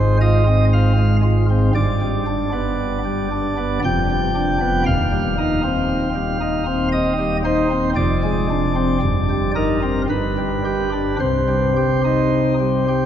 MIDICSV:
0, 0, Header, 1, 2, 480
1, 0, Start_track
1, 0, Key_signature, -3, "minor"
1, 0, Tempo, 1023891
1, 819, Time_signature, 3, 2, 24, 8
1, 1300, Tempo, 1041667
1, 4180, Tempo, 1073345
1, 4660, Tempo, 1109057
1, 5941, End_track
2, 0, Start_track
2, 0, Title_t, "Pipe organ"
2, 0, Program_c, 0, 19
2, 0, Note_on_c, 0, 32, 67
2, 0, Note_on_c, 0, 44, 61
2, 0, Note_on_c, 0, 56, 48
2, 0, Note_on_c, 0, 72, 100
2, 80, Note_off_c, 0, 72, 0
2, 85, Note_off_c, 0, 56, 0
2, 98, Note_on_c, 0, 65, 60
2, 99, Note_on_c, 0, 75, 102
2, 206, Note_off_c, 0, 65, 0
2, 221, Note_on_c, 0, 60, 53
2, 303, Note_off_c, 0, 75, 0
2, 343, Note_on_c, 0, 77, 74
2, 435, Note_off_c, 0, 60, 0
2, 460, Note_on_c, 0, 56, 52
2, 545, Note_off_c, 0, 77, 0
2, 567, Note_off_c, 0, 56, 0
2, 577, Note_on_c, 0, 65, 62
2, 685, Note_off_c, 0, 65, 0
2, 702, Note_on_c, 0, 60, 55
2, 800, Note_off_c, 0, 32, 0
2, 800, Note_off_c, 0, 44, 0
2, 803, Note_off_c, 0, 60, 0
2, 820, Note_on_c, 0, 74, 104
2, 821, Note_on_c, 0, 31, 76
2, 821, Note_on_c, 0, 43, 74
2, 942, Note_on_c, 0, 55, 54
2, 1048, Note_off_c, 0, 55, 0
2, 1063, Note_on_c, 0, 62, 62
2, 1169, Note_off_c, 0, 62, 0
2, 1185, Note_on_c, 0, 59, 59
2, 1398, Note_off_c, 0, 59, 0
2, 1426, Note_on_c, 0, 55, 50
2, 1533, Note_off_c, 0, 55, 0
2, 1550, Note_on_c, 0, 62, 60
2, 1657, Note_off_c, 0, 62, 0
2, 1670, Note_on_c, 0, 59, 57
2, 1770, Note_off_c, 0, 31, 0
2, 1770, Note_off_c, 0, 74, 0
2, 1771, Note_off_c, 0, 43, 0
2, 1772, Note_off_c, 0, 59, 0
2, 1793, Note_on_c, 0, 41, 70
2, 1794, Note_on_c, 0, 79, 116
2, 1795, Note_on_c, 0, 29, 67
2, 1911, Note_on_c, 0, 55, 52
2, 2016, Note_off_c, 0, 55, 0
2, 2026, Note_on_c, 0, 62, 61
2, 2132, Note_off_c, 0, 62, 0
2, 2145, Note_on_c, 0, 59, 51
2, 2246, Note_off_c, 0, 59, 0
2, 2252, Note_off_c, 0, 41, 0
2, 2252, Note_off_c, 0, 79, 0
2, 2253, Note_off_c, 0, 29, 0
2, 2262, Note_on_c, 0, 39, 73
2, 2262, Note_on_c, 0, 77, 120
2, 2264, Note_on_c, 0, 27, 77
2, 2380, Note_on_c, 0, 55, 55
2, 2486, Note_off_c, 0, 55, 0
2, 2502, Note_on_c, 0, 63, 65
2, 2606, Note_off_c, 0, 63, 0
2, 2619, Note_on_c, 0, 60, 65
2, 2830, Note_off_c, 0, 60, 0
2, 2855, Note_on_c, 0, 55, 51
2, 2961, Note_off_c, 0, 55, 0
2, 2975, Note_on_c, 0, 63, 62
2, 3081, Note_off_c, 0, 63, 0
2, 3092, Note_on_c, 0, 60, 56
2, 3194, Note_off_c, 0, 77, 0
2, 3212, Note_on_c, 0, 75, 106
2, 3307, Note_off_c, 0, 60, 0
2, 3332, Note_on_c, 0, 55, 52
2, 3417, Note_off_c, 0, 75, 0
2, 3441, Note_off_c, 0, 55, 0
2, 3454, Note_on_c, 0, 63, 65
2, 3454, Note_on_c, 0, 72, 100
2, 3562, Note_off_c, 0, 63, 0
2, 3572, Note_on_c, 0, 60, 55
2, 3660, Note_off_c, 0, 72, 0
2, 3676, Note_off_c, 0, 60, 0
2, 3677, Note_off_c, 0, 39, 0
2, 3678, Note_off_c, 0, 27, 0
2, 3690, Note_on_c, 0, 74, 100
2, 3691, Note_on_c, 0, 29, 76
2, 3692, Note_on_c, 0, 41, 77
2, 3816, Note_on_c, 0, 56, 54
2, 3925, Note_off_c, 0, 56, 0
2, 3938, Note_on_c, 0, 62, 59
2, 4046, Note_off_c, 0, 62, 0
2, 4057, Note_on_c, 0, 60, 58
2, 4161, Note_off_c, 0, 60, 0
2, 4164, Note_off_c, 0, 29, 0
2, 4164, Note_off_c, 0, 41, 0
2, 4178, Note_on_c, 0, 31, 65
2, 4180, Note_on_c, 0, 43, 67
2, 4302, Note_on_c, 0, 55, 49
2, 4399, Note_off_c, 0, 74, 0
2, 4408, Note_off_c, 0, 55, 0
2, 4418, Note_on_c, 0, 63, 59
2, 4418, Note_on_c, 0, 70, 90
2, 4526, Note_off_c, 0, 63, 0
2, 4539, Note_on_c, 0, 60, 52
2, 4624, Note_off_c, 0, 70, 0
2, 4643, Note_off_c, 0, 60, 0
2, 4645, Note_off_c, 0, 31, 0
2, 4646, Note_off_c, 0, 43, 0
2, 4661, Note_on_c, 0, 31, 69
2, 4661, Note_on_c, 0, 43, 73
2, 4661, Note_on_c, 0, 71, 76
2, 4781, Note_on_c, 0, 55, 50
2, 4886, Note_off_c, 0, 55, 0
2, 4899, Note_on_c, 0, 67, 52
2, 5005, Note_off_c, 0, 67, 0
2, 5018, Note_on_c, 0, 62, 52
2, 5120, Note_off_c, 0, 62, 0
2, 5123, Note_off_c, 0, 31, 0
2, 5123, Note_off_c, 0, 43, 0
2, 5123, Note_off_c, 0, 71, 0
2, 5138, Note_on_c, 0, 36, 68
2, 5138, Note_on_c, 0, 48, 70
2, 5138, Note_on_c, 0, 72, 82
2, 5260, Note_on_c, 0, 55, 46
2, 5367, Note_off_c, 0, 55, 0
2, 5382, Note_on_c, 0, 67, 54
2, 5489, Note_off_c, 0, 67, 0
2, 5503, Note_on_c, 0, 63, 52
2, 5718, Note_off_c, 0, 63, 0
2, 5742, Note_on_c, 0, 55, 43
2, 5849, Note_off_c, 0, 55, 0
2, 5865, Note_on_c, 0, 67, 48
2, 5941, Note_off_c, 0, 36, 0
2, 5941, Note_off_c, 0, 48, 0
2, 5941, Note_off_c, 0, 67, 0
2, 5941, Note_off_c, 0, 72, 0
2, 5941, End_track
0, 0, End_of_file